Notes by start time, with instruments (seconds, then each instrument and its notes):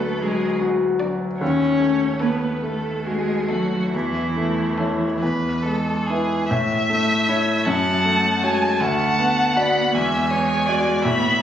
Already playing: grand piano D2 F#3 B4, cello A3, violin A4 D5
0.21 grand piano F#3, cello G#3, violin G#4
0.61 grand piano F#4
1.00 grand piano F#3, violin D5
1.40 grand piano D#2, cello C#4, violin C#5
1.80 grand piano A3
2.20 cello B3, violin A4 B4, grand piano B4
2.61 cello A3, grand piano A3, violin A4
3.05 cello G#3, grand piano F#4, violin G#4
3.49 cello F#3, grand piano A3, violin F#4 A4
3.94 grand piano E2, cello E3, violin E4
4.37 grand piano A3
4.78 grand piano E4 C#5, violin A4
5.21 grand piano E2, violin B4
5.63 grand piano G#3, violin A4
6.07 grand piano E4 B4, violin G#4
6.49 grand piano A2, violin E5
6.90 grand piano A3
7.29 grand piano E4 C#5
7.65 grand piano F#2, cello F#3, violin F#5 A5
8.05 grand piano A3
8.43 cello G#3, grand piano F#4 C#5, violin G#5
8.79 grand piano D2, cello A3, violin F#5 A5
9.18 grand piano B3
9.55 cello B3, grand piano F#4 D5, violin B5
9.94 grand piano E2, cello G#3, violin E5 G#5
10.31 grand piano B3, violin C#5
10.67 grand piano F#4 D5, violin D5
11.03 grand piano A2, cello B3, violin E5 B5